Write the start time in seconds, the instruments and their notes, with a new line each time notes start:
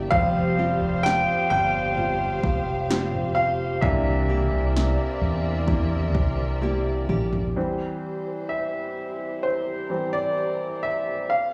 Already playing: nylon-string guitar C3 A#3 E4 G4, string section G4
0.11 fretless electric bass F1, upright piano F3 G3 C4 F5, nylon-string guitar F3, string section C5 F5, kick, floor tom
0.58 nylon-string guitar C4 F4 G4
0.81 fretless electric bass F1
1.03 upright piano G5, snare
1.50 fretless electric bass G1, upright piano G5, floor tom
1.97 nylon-string guitar F4, floor tom
2.43 fretless electric bass F1, kick
2.89 nylon-string guitar C4 F4 G4, snare
3.13 floor tom
3.35 nylon-string guitar G4, upright piano F5
3.81 fretless electric bass C2, nylon-string guitar C3, upright piano E3 A#3 D4 E5, string section C4 A#4 D5 E5, kick, floor tom
4.29 nylon-string guitar A#3 E4 G4
4.52 fretless electric bass C2
4.77 snare
5.21 fretless electric bass E2, floor tom
5.68 nylon-string guitar E4, kick, floor tom
6.15 fretless electric bass C2, kick
6.62 nylon-string guitar A#3 E4 G4, high tom
7.09 fretless electric bass A#1, nylon-string guitar G4, mid tom
7.33 floor tom
7.56 upright piano E3 G3 C4, string section E4 G4 C5
8.49 upright piano E5
9.43 string section A#4, upright piano C5
9.90 upright piano E3 G3 C4
10.13 upright piano D5
10.83 upright piano E5
11.30 string section C3 C4 F4 A4 C5, upright piano F5